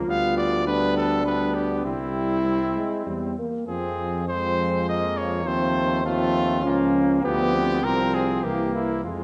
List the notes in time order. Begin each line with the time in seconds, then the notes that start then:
Already playing: F3 A#3 F4
0.07 D2 G3 B3 F5
0.38 D5
0.66 G3 B3 D4 B4
0.97 A4
1.24 G3 B3 B4
1.55 G4
1.84 C2 G3 C4 E4
2.45 G3
2.76 G#3
3.06 E2 G3
3.39 A#3
3.68 F2 F3 C4 G#4
4.28 F3 G#3 C4 C5
4.88 A#3 D#5
5.17 C#5
5.46 D#2 F3 A3 C4 C5
6.05 F3 A3 C4 F4
6.63 C#2 F3 A#3 C#4
7.22 D2 F3 B3 G4
7.53 C4
7.84 C2 F3 C4 A#4
8.14 G#4
8.44 C2 E3 A#3 G4
8.75 E4
9.04 F2 F3 G#3 F4